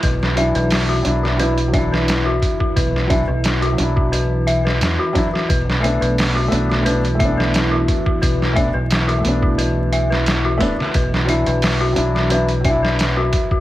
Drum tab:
HH |x-xxo-x-xxx-x-x-|x-x-xxx-x-x-x-x-|x-xxo-x-xxx-x-x-|x-x-xxx-x-x-x-x-|
SD |-o--o--o---oo---|-o--o------oo--o|-o--o--o---oo---|-o--o------oo--o|
BD |o---------o---oo|o-o----o------o-|o---------o---oo|o-o----o------o-|

HH |x-xxo-x-xxx-x-x-|
SD |-o--o--o---oo---|
BD |o---------o---oo|